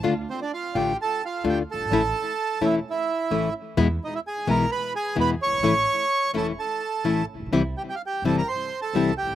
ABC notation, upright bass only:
X:1
M:4/4
L:1/16
Q:1/4=128
K:Dm
V:1 name="Upright bass" clef=bass
D,,3/2 z4 z/2 A,,,3/2 z4 z/2 D,,3/2 z ^F,,,/2 G,,,/2 ^G,,,/2 | A,,,3/2 z4 z/2 E,,,3/2 z4 z/2 A,,,3/2 z2 z/2 | E,,3/2 z4 z/2 =B,,,3/2 z4 z/2 E,,3/2 z ^F,,,/2 G,,,/2 ^G,,,/2 | A,,,3/2 z4 z/2 E,,,3/2 z4 z/2 A,,,3/2 z A,,,/2 B,,,/2 =B,,,/2 |
C,,3/2 z4 z/2 G,,,3/2 z4 z/2 C,,3/2 z G,,,/2 ^G,,,/2 z/2 |]